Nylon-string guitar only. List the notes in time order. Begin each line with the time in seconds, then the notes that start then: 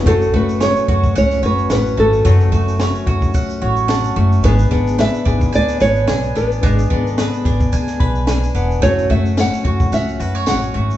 0.08 A4
0.36 B4
0.63 C#5
1.18 C#5
1.46 B4
1.73 B4
2.00 A4
4.45 B4
5.00 E5
5.55 D5
5.81 C#5
6.37 B4
7.10 A4
8.83 C#5
9.11 E5
9.40 F#5
9.94 E5
10.48 F#5